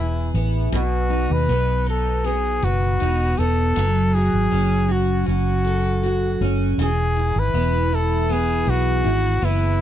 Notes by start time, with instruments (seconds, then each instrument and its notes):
Already playing: fingered electric bass E1, steel-string acoustic guitar E3 B3 E4 G#4, trumpet E4
0.34 fingered electric bass A1, steel-string acoustic guitar B3
0.72 fingered electric bass B1, steel-string acoustic guitar B2, trumpet F#4
1.10 steel-string acoustic guitar D#4
1.30 fingered electric bass D#2, trumpet B4
1.49 fingered electric bass B1, steel-string acoustic guitar B3
1.86 steel-string acoustic guitar D#4, trumpet A4
2.24 steel-string acoustic guitar B3, trumpet G#4
2.62 fingered electric bass F#1, trumpet F#4, steel-string acoustic guitar B4
3.00 fingered electric bass E1, steel-string acoustic guitar D#4
3.37 fingered electric bass E1, steel-string acoustic guitar B3, trumpet A4
3.76 fingered electric bass F#1, steel-string acoustic guitar F#3
4.14 steel-string acoustic guitar F#4, trumpet G#4
4.33 fingered electric bass G#1
4.51 fingered electric bass F#1, steel-string acoustic guitar C#4
4.88 steel-string acoustic guitar F#4, trumpet F#4
5.26 fingered electric bass F#1, steel-string acoustic guitar C#4, trumpet F#4
5.65 steel-string acoustic guitar A4
6.03 steel-string acoustic guitar F#4
6.41 fingered electric bass F#1, steel-string acoustic guitar C#4
6.78 fingered electric bass E1, steel-string acoustic guitar E3
6.82 trumpet G#4
7.16 steel-string acoustic guitar E4
7.36 fingered electric bass G#1, trumpet B4
7.54 fingered electric bass E1, steel-string acoustic guitar B3
7.92 steel-string acoustic guitar E4, trumpet A4
8.29 steel-string acoustic guitar B3, trumpet G#4
8.67 fingered electric bass B1, trumpet F#4, steel-string acoustic guitar G#4
9.04 fingered electric bass G#1, steel-string acoustic guitar E4
9.42 fingered electric bass F#1, steel-string acoustic guitar B3, trumpet E4